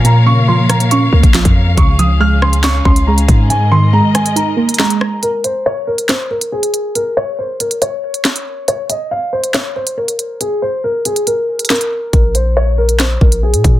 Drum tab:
HH |x-----------x-x-x-----x-x-x-----|x---x---------x-x-----x---x-x---|x-----------x-x-x-----xxxxx-----|x---x---------x-x-----x---x-x---|
CP |------------------------x-------|----------------x---------------|------------------------x-------|----------------x---------------|
SD |------------r-----------o-------|------------r---o---------------|------------r-----------o---r---|----------------o---------------|
BD |----------------------o---o-----|o-------------------o-------o---|--------------------------------|--------------------------------|

HH |x-----------x-x-x-----x-x-x-----|x---x---------x-x-----x---x-x---|x-----------x-x-x-----xxxxx-----|x---x---------x-x-----x---x-x---|
CP |------------------------x-------|----------------x---------------|------------------------x-------|----------------x---------------|
SD |------------------------o-------|----------------o---------------|------------------------o-------|----------------o---------------|
BD |--------------------------------|--------------------------------|--------------------------------|o-------------------o-------o---|